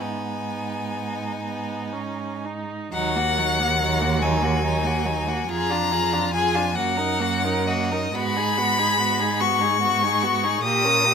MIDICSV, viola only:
0, 0, Header, 1, 2, 480
1, 0, Start_track
1, 0, Key_signature, -6, "minor"
1, 0, Tempo, 958466
1, 8, Time_signature, 6, 3, 24, 8
1, 967, Tempo, 998336
1, 1447, Tempo, 855920
1, 3847, Tempo, 940439
1, 4327, Tempo, 854701
1, 4807, Tempo, 816327
1, 6063, End_track
2, 0, Start_track
2, 0, Title_t, "Viola"
2, 0, Program_c, 0, 41
2, 3, Note_on_c, 0, 59, 41
2, 668, Note_off_c, 0, 59, 0
2, 712, Note_on_c, 0, 59, 45
2, 966, Note_on_c, 0, 61, 37
2, 973, Note_off_c, 0, 59, 0
2, 1214, Note_on_c, 0, 63, 42
2, 1221, Note_off_c, 0, 61, 0
2, 1447, Note_off_c, 0, 63, 0
2, 1450, Note_on_c, 0, 54, 68
2, 1575, Note_on_c, 0, 58, 56
2, 1583, Note_off_c, 0, 54, 0
2, 1699, Note_on_c, 0, 54, 63
2, 1707, Note_off_c, 0, 58, 0
2, 1821, Note_on_c, 0, 58, 55
2, 1830, Note_off_c, 0, 54, 0
2, 1933, Note_off_c, 0, 58, 0
2, 1936, Note_on_c, 0, 54, 59
2, 2053, Note_on_c, 0, 58, 56
2, 2061, Note_off_c, 0, 54, 0
2, 2163, Note_on_c, 0, 54, 63
2, 2172, Note_off_c, 0, 58, 0
2, 2279, Note_on_c, 0, 58, 60
2, 2288, Note_off_c, 0, 54, 0
2, 2399, Note_off_c, 0, 58, 0
2, 2402, Note_on_c, 0, 54, 51
2, 2517, Note_on_c, 0, 58, 62
2, 2526, Note_off_c, 0, 54, 0
2, 2638, Note_on_c, 0, 54, 55
2, 2646, Note_off_c, 0, 58, 0
2, 2759, Note_on_c, 0, 58, 60
2, 2767, Note_off_c, 0, 54, 0
2, 2876, Note_off_c, 0, 58, 0
2, 2880, Note_on_c, 0, 65, 59
2, 2998, Note_on_c, 0, 62, 55
2, 3007, Note_off_c, 0, 65, 0
2, 3120, Note_on_c, 0, 65, 60
2, 3128, Note_off_c, 0, 62, 0
2, 3240, Note_on_c, 0, 62, 53
2, 3249, Note_off_c, 0, 65, 0
2, 3359, Note_off_c, 0, 62, 0
2, 3362, Note_on_c, 0, 65, 57
2, 3478, Note_on_c, 0, 62, 51
2, 3486, Note_off_c, 0, 65, 0
2, 3590, Note_off_c, 0, 62, 0
2, 3593, Note_on_c, 0, 58, 60
2, 3718, Note_on_c, 0, 63, 61
2, 3727, Note_off_c, 0, 58, 0
2, 3842, Note_on_c, 0, 58, 54
2, 3850, Note_off_c, 0, 63, 0
2, 3965, Note_on_c, 0, 63, 53
2, 3972, Note_off_c, 0, 58, 0
2, 4080, Note_off_c, 0, 63, 0
2, 4083, Note_on_c, 0, 58, 61
2, 4207, Note_on_c, 0, 63, 60
2, 4214, Note_off_c, 0, 58, 0
2, 4321, Note_off_c, 0, 63, 0
2, 4324, Note_on_c, 0, 59, 62
2, 4450, Note_on_c, 0, 63, 57
2, 4458, Note_off_c, 0, 59, 0
2, 4567, Note_on_c, 0, 59, 66
2, 4576, Note_off_c, 0, 63, 0
2, 4685, Note_on_c, 0, 63, 61
2, 4694, Note_off_c, 0, 59, 0
2, 4801, Note_off_c, 0, 63, 0
2, 4804, Note_on_c, 0, 59, 58
2, 4921, Note_on_c, 0, 63, 55
2, 4930, Note_off_c, 0, 59, 0
2, 5043, Note_on_c, 0, 59, 66
2, 5052, Note_off_c, 0, 63, 0
2, 5160, Note_on_c, 0, 63, 62
2, 5169, Note_off_c, 0, 59, 0
2, 5281, Note_off_c, 0, 63, 0
2, 5284, Note_on_c, 0, 59, 51
2, 5411, Note_on_c, 0, 63, 59
2, 5420, Note_off_c, 0, 59, 0
2, 5528, Note_on_c, 0, 59, 59
2, 5536, Note_off_c, 0, 63, 0
2, 5651, Note_on_c, 0, 63, 54
2, 5660, Note_off_c, 0, 59, 0
2, 5764, Note_off_c, 0, 63, 0
2, 5767, Note_on_c, 0, 58, 65
2, 5890, Note_on_c, 0, 61, 54
2, 5899, Note_off_c, 0, 58, 0
2, 6007, Note_on_c, 0, 58, 65
2, 6016, Note_off_c, 0, 61, 0
2, 6063, Note_off_c, 0, 58, 0
2, 6063, End_track
0, 0, End_of_file